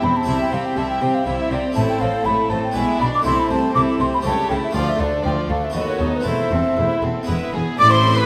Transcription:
Already playing: harpsichord C4 C5
0.02 double bass section E1, harpsichord E2, cello section E2, viola section C4, violin section E4 C5, flute B5
0.17 flute A5
0.23 double bass section C2, harpsichord C4 E4 C5
0.27 harpsichord C3, cello section C3, viola section G3, violin section E4 E5
0.41 flute G5
0.52 double bass section C2, harpsichord C3, cello section C3, viola section C4, violin section G4 C5, flute F5
0.66 flute G5
0.77 double bass section C2, harpsichord C3, cello section C3, viola section G3, violin section E4 E5, flute A5
0.90 flute G5
1.01 double bass section C2, cello section C3, harpsichord C3, viola section C4, violin section G4 C5
1.15 flute F5
1.25 double bass section C2, harpsichord C3, cello section C3, viola section G3, violin section E4 E5
1.41 flute E5
1.50 double bass section C2, cello section C3, harpsichord C3, viola section C4, violin section G4 C5, flute D5
1.72 viola section A3, harpsichord C4 E4 C5, violin section A4, flute A5
1.76 double bass section A1, cello section A2, harpsichord A2, violin section E4
1.89 flute G5
2.00 double bass section A1, cello section A2, harpsichord A2, viola section C4, violin section A4 C5, flute F5
2.25 double bass section A1, cello section A2, harpsichord A2, viola section A3, violin section E4 A4, flute B5
2.50 double bass section A1, harpsichord A2, cello section A2, viola section C4, violin section A4 C5, flute A5
2.64 flute G5
2.71 viola section G#3, harpsichord B3 E4 D5, violin section E4
2.76 double bass section B1, harpsichord B2, cello section B2, violin section E5, flute G#5
3.00 double bass section B1, harpsichord B2, cello section B2, viola section B3, violin section D4 D5, flute B5
3.15 flute D6
3.22 double bass section C2, cello section C3, harpsichord A3 E4 C5, viola section C4, violin section E4 A4, flute C6
3.27 harpsichord C3
3.39 flute B5
3.48 double bass section C2, cello section C3, harpsichord C3, viola section A3, violin section C4 C5, flute A5
3.74 double bass section C2, cello section C3, harpsichord C3, viola section C4, violin section E4 A4, flute D6
3.98 double bass section C2, cello section C3, harpsichord C3, viola section A3, violin section C4 C5, flute C6
4.14 flute B5
4.21 cello section C#3, harpsichord C#3 A3 G4 A4, viola section G3
4.25 double bass section C#2, violin section G4 C#5, flute A5
4.49 double bass section C#2, cello section C#3, harpsichord C#3, viola section A3, violin section E4 A4, flute G5
4.64 flute E5
4.71 cello section D2, viola section F3, harpsichord A3 F4 A4, violin section D5
4.75 double bass section D2, harpsichord D2, violin section F4, flute F5
4.89 flute E5
4.98 double bass section D2, cello section D2, harpsichord D2, viola section A3, violin section D4 A4, flute D5
5.23 harpsichord D2, cello section D2, double bass section D2, viola section F3, violin section F4 D5, flute G5
5.48 cello section D2, double bass section D2, harpsichord D2, viola section A3, violin section D4 A4, flute F5
5.64 flute E5
5.70 cello section D#2, harpsichord D#2 B3 F#4 A4, viola section A3, violin section B4
5.75 double bass section D#2, violin section F#4, flute D#5
5.88 flute C#5
5.99 harpsichord D#2, cello section D#2, double bass section D#2, viola section B3, violin section D#4 A4
6.16 flute B4
6.21 harpsichord C4 E4 A4
6.25 double bass section E1, cello section E2, harpsichord E2, viola section A3, violin section E4 C5, flute E5
6.51 double bass section E1, harpsichord E2, cello section E2, viola section C4, violin section C4 A4
6.76 double bass section E1, harpsichord E2, cello section E2, viola section A3, violin section E4 C5
7.01 double bass section E1, harpsichord E2, cello section E2, viola section C4, violin section C4 A4
7.23 cello section E2, harpsichord B3 E4 G#4
7.28 double bass section E1, harpsichord E2, viola section G#3, violin section E4 B4
7.53 double bass section E1, harpsichord E2, cello section E2, viola section B3, violin section G#4
7.78 double bass section A1, harpsichord A2, cello section A2, viola section E4, violin section D5 D6, flute D6
7.90 harpsichord E4, violin section C5 C6, flute C6
8.03 harpsichord C4
8.15 harpsichord D4, violin section B4 B5, flute B5

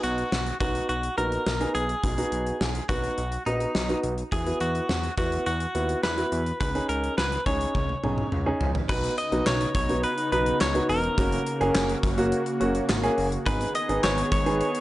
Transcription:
Already playing: grand piano B3 D#4 F#4
0.03 analog synth bass B1, clean electric guitar F#4, closed hi-hat
0.18 closed hi-hat
0.32 analog synth bass B1, snare
0.47 closed hi-hat
0.60 analog synth bass B1, grand piano B3 D#4 F#4, clean electric guitar F#4, kick, closed hi-hat
0.75 closed hi-hat
0.89 analog synth bass B1, clean electric guitar F#4, closed hi-hat
1.03 closed hi-hat
1.18 analog synth bass A#1, grand piano B3 D#4 F#4, clean electric guitar A#4, closed hi-hat
1.32 closed hi-hat
1.46 analog synth bass B1, snare
1.61 grand piano B3 D#4 G#4, closed hi-hat
1.75 analog synth bass B1, clean electric guitar G#4, closed hi-hat
1.89 closed hi-hat
2.03 analog synth bass B1, grand piano D#4 F#4, kick, closed hi-hat
2.18 grand piano B3 D#4 F#4, closed hi-hat
2.32 analog synth bass B1, closed hi-hat
2.46 closed hi-hat
2.61 analog synth bass B1, snare
2.75 closed hi-hat
2.89 analog synth bass B1, grand piano B3 D#4 F#4, clean electric guitar F#4, kick, closed hi-hat
3.04 closed hi-hat
3.18 analog synth bass B1, closed hi-hat
3.32 closed hi-hat
3.46 analog synth bass A#1, grand piano B3 D#4 F#4, clean electric guitar D#4, closed hi-hat
3.60 closed hi-hat
3.75 analog synth bass B1, snare
3.89 grand piano B3 D#4 F#4, closed hi-hat
4.03 analog synth bass B1, closed hi-hat
4.18 closed hi-hat
4.32 analog synth bass E2, grand piano E4 F#4, clean electric guitar G#4, kick, closed hi-hat
4.46 grand piano B3 E4 F#4, closed hi-hat
4.60 analog synth bass E2, clean electric guitar F#4, closed hi-hat
4.75 closed hi-hat
4.89 analog synth bass E2, snare
5.03 closed hi-hat
5.17 analog synth bass E2, grand piano B3 E4 F#4, clean electric guitar F#4, kick, closed hi-hat
5.32 closed hi-hat
5.46 analog synth bass E2, clean electric guitar F#4, closed hi-hat
5.60 closed hi-hat
5.75 analog synth bass D#2, grand piano B3 E4 F#4, closed hi-hat
5.89 closed hi-hat
6.03 analog synth bass E2, clean electric guitar B4, snare
6.18 grand piano B3 E4 F#4, closed hi-hat
6.32 analog synth bass E2, closed hi-hat
6.46 closed hi-hat
6.61 analog synth bass C#2, grand piano D#4 G#4, clean electric guitar B4, kick, closed hi-hat
6.75 grand piano C#4 D#4 G#4, closed hi-hat
6.89 analog synth bass C#2, clean electric guitar A#4, closed hi-hat
7.04 closed hi-hat
7.18 analog synth bass C#2, clean electric guitar B4, snare
7.32 closed hi-hat
7.46 analog synth bass C#2, grand piano C#4 D#4 G#4, clean electric guitar C#5, kick, closed hi-hat
7.61 closed hi-hat
7.75 analog synth bass C#2, kick, high tom
7.89 high tom
8.03 analog synth bass B1, grand piano C#4 D#4 G#4, mid tom
8.18 mid tom
8.32 analog synth bass C#2, mid tom
8.46 grand piano C#4 D#4 G#4
8.61 analog synth bass C#2, floor tom
8.75 floor tom
8.89 analog synth bass B1, analog synth pad C#3 B3 D#4, grand piano B3 D#4 F#4, clean electric guitar B4, kick, crash
9.04 closed hi-hat
9.18 clean electric guitar D#5, closed hi-hat
9.32 analog synth bass B1, grand piano B3 D#4 F#4, closed hi-hat
9.46 analog synth bass B1, clean electric guitar C#5, snare, clap
9.61 closed hi-hat
9.75 analog synth bass B1, clean electric guitar C#5, kick, closed hi-hat
9.89 grand piano B3 D#4 F#4, closed hi-hat
10.03 clean electric guitar B4, closed hi-hat
10.18 closed hi-hat
10.32 analog synth bass B1, grand piano B3 D#4 F#4, clean electric guitar B4, closed hi-hat
10.46 closed hi-hat
10.61 analog synth bass C#2, clean electric guitar C#5, snare, clap
10.75 grand piano B3 D#4 F#4, closed hi-hat
10.89 analog synth bass E1, clean electric guitar A#4, open hi-hat
11.04 closed hi-hat
11.18 analog synth bass F#1, analog synth pad A#3 F#4, grand piano A#3 C#4 F#4, kick, closed hi-hat
11.32 closed hi-hat
11.46 closed hi-hat
11.61 analog synth bass F#1, grand piano A#3 C#4 G#4, closed hi-hat
11.75 analog synth bass F#1, snare, clap
11.89 closed hi-hat
12.03 analog synth bass F#1, kick, closed hi-hat
12.18 grand piano A#3 C#4 F#4, closed hi-hat
12.32 closed hi-hat
12.46 closed hi-hat
12.61 analog synth bass F#1, grand piano A#3 C#4 F#4, closed hi-hat
12.75 closed hi-hat
12.89 analog synth bass G#1, snare, clap
13.03 grand piano A#3 C#4 G#4, closed hi-hat
13.18 analog synth bass F#1, open hi-hat
13.32 closed hi-hat
13.46 analog synth bass G#1, analog synth pad D#3 B3 G#4, grand piano B3 D#4 G#4, clean electric guitar B4, kick, closed hi-hat
13.61 closed hi-hat
13.75 clean electric guitar D#5, closed hi-hat
13.89 analog synth bass G#1, grand piano B3 D#4 G#4, closed hi-hat
14.03 analog synth bass G#1, clean electric guitar C#5, snare, clap
14.18 closed hi-hat
14.32 analog synth bass G#1, clean electric guitar C#5, kick, closed hi-hat
14.46 grand piano B3 D#4 G#4, closed hi-hat
14.61 closed hi-hat
14.75 closed hi-hat

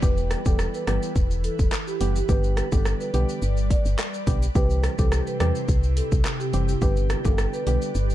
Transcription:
Already playing: ambient pad G4 B4
0.02 fm bass E1, synth stab E3 G3 B3 G4, ambient pad E3 E4, marimba B4, kick, shaker
0.17 shaker
0.30 cross-stick, closed hi-hat, shaker
0.45 fm bass E1, synth stab E3 G3 B3 G4, marimba A4, kick, shaker
0.59 cross-stick, shaker
0.74 marimba B4, shaker
0.87 fm bass G1, synth stab E3 G3 B3 G4, marimba B4, cross-stick, closed hi-hat, shaker
1.02 shaker
1.16 fm bass E1, kick, shaker
1.31 shaker
1.44 marimba A4, closed hi-hat, shaker
1.59 fm bass E1, kick, shaker
1.72 cross-stick, clap, shaker
1.87 marimba G4, shaker
2.00 fm bass F#1, synth stab E3 G3 B3 G4, closed hi-hat, shaker
2.16 marimba G4, shaker
2.29 fm bass G1, synth stab D3 G3 B3 G4, ambient pad G3 D5, marimba B4, kick, shaker
2.43 shaker
2.57 cross-stick, closed hi-hat, shaker
2.72 fm bass G1, synth stab D3 G3 B3 G4, marimba A4, kick, shaker
2.85 cross-stick, shaker
3.00 marimba B4, shaker
3.13 fm bass B1, synth stab D3 G3 B3 G4, marimba B4, closed hi-hat, shaker
3.29 shaker
3.42 fm bass G1, shaker
3.57 shaker
3.70 marimba D5, kick, closed hi-hat, shaker
3.85 fm bass G1, shaker
3.99 cross-stick, clap, shaker
4.14 shaker
4.27 fm bass B1, synth stab D3 G3 B3 G4, kick, closed hi-hat, shaker
4.42 shaker
4.55 fm bass C2, ambient pad C3 C4 E4 G4, synth stab E3 G3 C4 G4, marimba B4, kick, shaker
4.70 shaker
4.83 cross-stick, closed hi-hat, shaker
4.98 fm bass C2, synth stab E3 G3 C4 G4, marimba A4, kick, shaker
5.12 cross-stick, shaker
5.27 marimba B4, shaker
5.40 fm bass E2, synth stab E3 G3 C4 G4, marimba B4, cross-stick, closed hi-hat, shaker
5.55 shaker
5.68 fm bass C2, kick, shaker
5.83 shaker
5.97 marimba A4, closed hi-hat, shaker
6.12 fm bass C2, kick, shaker
6.25 cross-stick, clap, shaker
6.40 marimba G4, shaker
6.53 fm bass F#1, synth stab E3 G3 C4 G4, closed hi-hat, shaker
6.68 marimba G4, shaker
6.81 fm bass G1, synth stab D3 G3 B3 G4, ambient pad G3 B4 D5, marimba B4, kick, shaker
6.96 shaker
7.10 cross-stick, closed hi-hat, shaker
7.25 fm bass G1, synth stab D3 G3 B3 G4, marimba A4, kick, high timbale, shaker
7.38 cross-stick, shaker
7.53 marimba B4, shaker
7.66 fm bass B1, synth stab D3 G3 B3 G4, marimba B4, closed hi-hat, shaker
7.82 shaker
7.95 fm bass G1, shaker
8.10 shaker

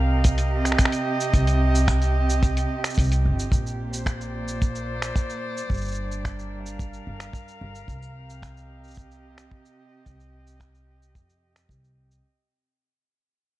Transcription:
Already playing: upright bass C2, string quartet C3 C4 G4 A#4 F5, hammered dulcimer C4
0.04 string quartet D#5
0.24 kick, closed hi-hat, shaker
0.38 closed hi-hat, shaker
0.65 finger snap, shaker
0.72 finger snap
0.78 finger snap, kick, closed hi-hat, shaker
0.85 finger snap
0.92 closed hi-hat, shaker
1.20 shaker
1.33 upright bass C2, kick, closed hi-hat, shaker
1.47 closed hi-hat, shaker
1.75 shaker
1.88 finger snap, kick, closed hi-hat, shaker
2.02 closed hi-hat, shaker
2.30 shaker
2.43 kick, closed hi-hat, shaker
2.57 closed hi-hat, shaker
2.84 finger snap, shaker
2.90 shaker
2.94 upright bass C2, kick, shaker
2.99 closed hi-hat, shaker
3.03 shaker
3.08 shaker
3.12 closed hi-hat, shaker
3.25 upright bass G1
3.39 shaker
3.52 upright bass A#1, string quartet A#2, kick, shaker
3.67 shaker
3.82 string quartet A#3
3.92 string quartet C5, shaker
4.06 finger snap, kick, shaker
4.20 string quartet D5, shaker
4.48 shaker
4.62 kick, shaker
4.75 shaker
5.02 finger snap, shaker
5.16 kick, shaker
5.30 shaker
5.57 shaker
5.70 upright bass G1, string quartet G3, kick, shaker
5.74 string quartet D4, shaker
5.77 shaker
5.81 shaker
5.85 shaker
5.88 shaker
5.91 shaker
5.94 shaker
6.11 shaker
6.25 finger snap, kick, shaker
6.30 string quartet A#4
6.39 shaker
6.65 string quartet F5, shaker
6.79 kick, shaker
6.93 shaker
7.07 upright bass G1
7.20 finger snap, shaker
7.33 kick, shaker
7.48 shaker
7.61 upright bass G1
7.75 shaker
7.88 upright bass C2, string quartet C3, kick, shaker
8.02 shaker
8.19 string quartet C4 G4
8.30 shaker
8.42 finger snap, kick, shaker
8.51 string quartet D#5
8.57 shaker
8.84 shaker
8.88 shaker
8.91 shaker
8.94 kick, shaker
8.98 shaker
9.11 shaker
9.38 finger snap, shaker
9.51 kick
9.65 shaker
10.06 upright bass C2, kick, shaker
10.20 shaker
10.47 shaker
10.60 finger snap, kick, shaker
10.75 shaker
11.02 shaker
11.15 upright bass F2, kick, shaker
11.30 shaker
11.56 finger snap, shaker
11.69 upright bass C2, kick, shaker
11.84 shaker
12.11 shaker

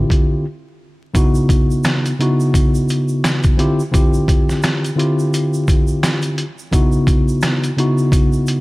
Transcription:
Already playing: tine electric piano D3 C4 E4 F4 G4
0.10 kick, closed hi-hat
1.14 tine electric piano C#3 B3 D#4 E4 F#4, kick, closed hi-hat, shaker
1.35 shaker
1.49 kick, closed hi-hat, shaker
1.71 shaker
1.84 cross-stick, snare, closed hi-hat, shaker
2.06 closed hi-hat, shaker
2.19 tine electric piano C#3 B3 D#4 E4 F#4, closed hi-hat
2.40 shaker
2.54 kick, closed hi-hat, shaker
2.75 shaker
2.89 closed hi-hat, shaker
3.08 shaker
3.24 cross-stick, snare, closed hi-hat, shaker
3.43 kick, closed hi-hat, shaker
3.57 tine electric piano D3 C4 E4 F4 G4, closed hi-hat
3.80 shaker
3.91 tine electric piano D3 C4 E4 F4 G4, kick, closed hi-hat, shaker
4.14 shaker
4.28 kick, closed hi-hat, shaker
4.49 snare, shaker
4.63 cross-stick, snare, closed hi-hat, shaker
4.85 closed hi-hat, shaker
4.96 tine electric piano D3 C4 E4 F4 G4, closed hi-hat
5.19 shaker
5.34 closed hi-hat, shaker
5.54 shaker
5.68 kick, closed hi-hat, shaker
5.88 shaker
6.03 cross-stick, snare, closed hi-hat, shaker
6.22 closed hi-hat, shaker
6.38 closed hi-hat
6.59 shaker
6.71 tine electric piano C#3 B3 D#4 E4 F#4, kick, closed hi-hat, shaker
6.92 shaker
7.07 kick, closed hi-hat, shaker
7.28 shaker
7.41 cross-stick, snare, closed hi-hat, shaker
7.64 closed hi-hat, shaker
7.77 tine electric piano C#3 B3 D#4 E4 F#4, closed hi-hat
7.98 shaker
8.12 kick, closed hi-hat, shaker
8.33 shaker
8.47 closed hi-hat, shaker

